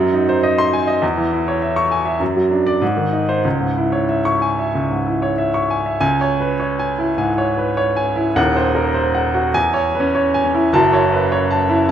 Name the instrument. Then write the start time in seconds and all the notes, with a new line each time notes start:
grand piano
Already playing: F#2
0.00 F#3
0.14 D#4
0.29 C5
0.43 D#5
0.58 C6
0.73 G#5
0.87 D#5
1.02 E2
1.17 E3
1.33 E4
1.48 C#5
1.62 E5
1.76 C#6
1.91 G#5
2.05 E5
2.20 F#2
2.36 F#3
2.51 D4
2.66 D5
2.82 G#2
2.97 D#3
3.13 D#4
3.29 C5
3.45 C#2
3.60 G#2
3.77 E4
3.92 C#5
4.09 E5
4.25 C#6
4.42 G#5
4.59 E5
4.75 C#2
4.91 G#2
5.07 E4
5.22 C#5
5.38 E5
5.54 C#6
5.70 G#5
5.86 E5
6.01 C#2 G#5
6.21 C#5
6.40 B4
6.60 C#5
6.79 G#5
6.98 E4
7.18 G#2 G#5
7.38 C#5
7.57 B4
7.77 C#5
7.96 G#5
8.16 E4
8.35 D#1 D#2 F#5
8.56 C5
8.75 A#4
8.94 C5
9.15 F#5
9.34 F#4
9.54 E2 G#5
9.74 C#5
9.95 B4
10.00 C#4
10.15 C#5
10.34 G#5
10.44 C#4
10.54 E4
10.73 F#1 F#2 A5
10.93 C#5
11.12 B4
11.32 C#5
11.51 A5
11.69 E4